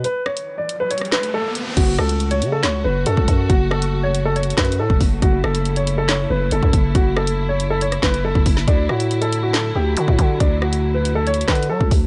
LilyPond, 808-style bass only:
\new Staff \with { instrumentName = "808-style bass" } { \clef bass \time 4/4 \key fis \minor \tempo 4 = 139 r1 | fis,,8 cis,4 cis8 cis,8 fis,,8 fis,16 cis,16 fis,8 | fis,,2~ fis,,8 fis,8 a,16 e,,16 fis,,8 | fis,,8 fis,,2 fis,,8 fis,,16 fis,16 fis,,8 |
fis,,2~ fis,,8 fis,,8. fis,,16 fis,,8 | d,8 a,2 d,8 d16 a,16 d8 | d,2~ d,8 d8 fis16 cis,16 d,8 | }